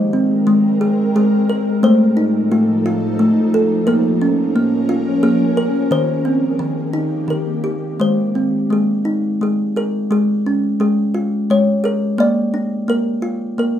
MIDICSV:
0, 0, Header, 1, 3, 480
1, 0, Start_track
1, 0, Tempo, 683371
1, 1290, Time_signature, 3, 2, 24, 8
1, 4637, Tempo, 697674
1, 9586, End_track
2, 0, Start_track
2, 0, Title_t, "Kalimba"
2, 0, Program_c, 0, 108
2, 0, Note_on_c, 0, 56, 82
2, 0, Note_on_c, 0, 72, 88
2, 93, Note_on_c, 0, 60, 65
2, 320, Note_off_c, 0, 56, 0
2, 329, Note_on_c, 0, 56, 72
2, 569, Note_on_c, 0, 68, 70
2, 804, Note_off_c, 0, 56, 0
2, 806, Note_off_c, 0, 68, 0
2, 812, Note_on_c, 0, 56, 67
2, 815, Note_on_c, 0, 68, 73
2, 844, Note_off_c, 0, 72, 0
2, 1050, Note_on_c, 0, 70, 70
2, 1057, Note_off_c, 0, 60, 0
2, 1060, Note_off_c, 0, 68, 0
2, 1286, Note_on_c, 0, 57, 85
2, 1290, Note_off_c, 0, 70, 0
2, 1291, Note_off_c, 0, 56, 0
2, 1292, Note_on_c, 0, 72, 80
2, 1523, Note_on_c, 0, 63, 68
2, 1760, Note_off_c, 0, 57, 0
2, 1766, Note_on_c, 0, 65, 66
2, 1768, Note_on_c, 0, 57, 69
2, 1785, Note_off_c, 0, 72, 0
2, 1999, Note_off_c, 0, 65, 0
2, 2007, Note_on_c, 0, 65, 76
2, 2234, Note_off_c, 0, 57, 0
2, 2243, Note_on_c, 0, 57, 70
2, 2480, Note_off_c, 0, 63, 0
2, 2487, Note_on_c, 0, 69, 75
2, 2717, Note_on_c, 0, 70, 75
2, 2720, Note_off_c, 0, 57, 0
2, 2721, Note_off_c, 0, 65, 0
2, 2722, Note_on_c, 0, 58, 83
2, 2723, Note_off_c, 0, 69, 0
2, 2961, Note_on_c, 0, 61, 71
2, 3192, Note_off_c, 0, 58, 0
2, 3200, Note_on_c, 0, 58, 75
2, 3435, Note_on_c, 0, 65, 74
2, 3665, Note_off_c, 0, 58, 0
2, 3673, Note_on_c, 0, 58, 76
2, 3673, Note_on_c, 0, 68, 69
2, 3703, Note_off_c, 0, 70, 0
2, 3914, Note_on_c, 0, 70, 82
2, 3915, Note_off_c, 0, 61, 0
2, 3920, Note_off_c, 0, 68, 0
2, 4150, Note_on_c, 0, 51, 85
2, 4152, Note_off_c, 0, 58, 0
2, 4152, Note_off_c, 0, 65, 0
2, 4157, Note_on_c, 0, 72, 81
2, 4161, Note_off_c, 0, 70, 0
2, 4391, Note_on_c, 0, 60, 65
2, 4622, Note_off_c, 0, 51, 0
2, 4631, Note_on_c, 0, 51, 71
2, 4633, Note_off_c, 0, 60, 0
2, 4866, Note_on_c, 0, 63, 70
2, 5088, Note_off_c, 0, 72, 0
2, 5095, Note_off_c, 0, 51, 0
2, 5103, Note_on_c, 0, 51, 68
2, 5120, Note_on_c, 0, 70, 63
2, 5350, Note_on_c, 0, 67, 68
2, 5367, Note_off_c, 0, 70, 0
2, 5596, Note_off_c, 0, 51, 0
2, 5597, Note_on_c, 0, 56, 68
2, 5598, Note_off_c, 0, 63, 0
2, 5598, Note_off_c, 0, 67, 0
2, 5608, Note_on_c, 0, 72, 70
2, 5842, Note_on_c, 0, 60, 55
2, 6075, Note_off_c, 0, 56, 0
2, 6083, Note_on_c, 0, 56, 62
2, 6099, Note_on_c, 0, 68, 63
2, 6107, Note_off_c, 0, 72, 0
2, 6322, Note_on_c, 0, 63, 66
2, 6548, Note_off_c, 0, 68, 0
2, 6562, Note_off_c, 0, 56, 0
2, 6571, Note_on_c, 0, 56, 61
2, 6583, Note_on_c, 0, 68, 62
2, 6804, Note_off_c, 0, 68, 0
2, 6808, Note_off_c, 0, 60, 0
2, 6813, Note_on_c, 0, 68, 65
2, 6818, Note_on_c, 0, 70, 68
2, 7040, Note_off_c, 0, 56, 0
2, 7045, Note_off_c, 0, 63, 0
2, 7048, Note_on_c, 0, 56, 71
2, 7050, Note_off_c, 0, 68, 0
2, 7058, Note_on_c, 0, 68, 65
2, 7060, Note_off_c, 0, 70, 0
2, 7295, Note_on_c, 0, 61, 62
2, 7517, Note_off_c, 0, 56, 0
2, 7523, Note_off_c, 0, 68, 0
2, 7525, Note_on_c, 0, 56, 61
2, 7531, Note_on_c, 0, 68, 66
2, 7763, Note_on_c, 0, 65, 68
2, 8000, Note_off_c, 0, 56, 0
2, 8008, Note_on_c, 0, 56, 66
2, 8014, Note_on_c, 0, 73, 71
2, 8018, Note_off_c, 0, 68, 0
2, 8118, Note_off_c, 0, 73, 0
2, 8240, Note_on_c, 0, 68, 66
2, 8242, Note_off_c, 0, 61, 0
2, 8250, Note_on_c, 0, 70, 72
2, 8477, Note_off_c, 0, 65, 0
2, 8477, Note_off_c, 0, 68, 0
2, 8477, Note_on_c, 0, 58, 80
2, 8481, Note_off_c, 0, 56, 0
2, 8489, Note_off_c, 0, 70, 0
2, 8490, Note_on_c, 0, 74, 77
2, 8721, Note_on_c, 0, 62, 59
2, 8949, Note_off_c, 0, 58, 0
2, 8957, Note_on_c, 0, 58, 65
2, 8967, Note_on_c, 0, 70, 71
2, 8975, Note_off_c, 0, 74, 0
2, 9192, Note_on_c, 0, 65, 68
2, 9431, Note_off_c, 0, 58, 0
2, 9439, Note_off_c, 0, 70, 0
2, 9439, Note_on_c, 0, 58, 64
2, 9447, Note_on_c, 0, 70, 65
2, 9586, Note_off_c, 0, 58, 0
2, 9586, Note_off_c, 0, 62, 0
2, 9586, Note_off_c, 0, 65, 0
2, 9586, Note_off_c, 0, 70, 0
2, 9586, End_track
3, 0, Start_track
3, 0, Title_t, "Ambient pad"
3, 0, Program_c, 1, 92
3, 0, Note_on_c, 1, 56, 75
3, 0, Note_on_c, 1, 60, 70
3, 0, Note_on_c, 1, 70, 88
3, 1270, Note_off_c, 1, 60, 0
3, 1271, Note_off_c, 1, 70, 0
3, 1272, Note_off_c, 1, 56, 0
3, 1284, Note_on_c, 1, 53, 72
3, 1285, Note_on_c, 1, 69, 86
3, 1290, Note_on_c, 1, 63, 67
3, 1291, Note_on_c, 1, 45, 76
3, 2705, Note_off_c, 1, 69, 0
3, 2707, Note_off_c, 1, 63, 0
3, 2708, Note_off_c, 1, 45, 0
3, 2710, Note_on_c, 1, 70, 84
3, 2712, Note_on_c, 1, 61, 67
3, 4123, Note_off_c, 1, 53, 0
3, 4134, Note_off_c, 1, 61, 0
3, 4134, Note_off_c, 1, 70, 0
3, 4160, Note_on_c, 1, 51, 80
3, 4641, Note_on_c, 1, 67, 78
3, 4643, Note_on_c, 1, 58, 65
3, 5590, Note_off_c, 1, 51, 0
3, 5595, Note_off_c, 1, 67, 0
3, 5596, Note_off_c, 1, 58, 0
3, 9586, End_track
0, 0, End_of_file